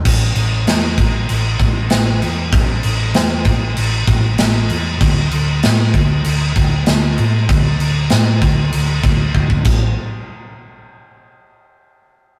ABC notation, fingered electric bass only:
X:1
M:4/4
L:1/8
Q:1/4=97
K:Ddor
V:1 name="Fingered electric bass" clef=bass
A,,, A,,, E,, A,,, A,,, A,,, A,,, E,, | A,,, A,,, E,, A,,, A,,, A,,, A,,, E,, | D,, D,, A,, D,, D,, D,, D,, A,, | D,, D,, A,, D,, D,, D,, D,, A,,, |
z8 |]